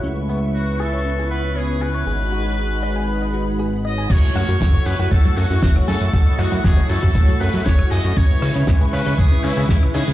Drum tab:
CC |----------------|----------------|x---------------|----------------|
HH |----------------|----------------|x-oxx-o-xxo-x-ox|x-oxx-o-xxoox-ox|
SH |----------------|----------------|xxxxxxxxxxxxxxxx|xxxxxxxxxxxxxxxx|
SD |----------------|----------------|--r-o-------or--|--r-o-------or--|
BD |----------------|----------------|o---o---o---o---|o---o--oo---o---|

CC |----------------|
HH |x-oxx-o-xxo---ox|
SH |xxxxxxxxxxxxxxxx|
SD |--r-o-------or--|
BD |o---o---o---o---|